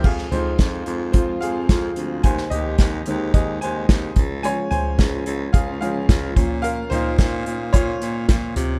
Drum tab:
CC |x---------------|----------------|----------------|----------------|
HH |--x-x-x-x-x-x-x-|x-x-x-x-x-x-x-x-|x-x-x-x-x-x-x-x-|x-x-x-x-x-x-x-x-|
SD |-o--o-------o---|-o--o-------o---|----o-------o---|----o-------o---|
FT |--o-------------|--o-------------|--o-----------o-|--o-----------o-|
BD |o---o---o---o---|o---o---o---o-o-|----o---o---o-o-|----o---o---o---|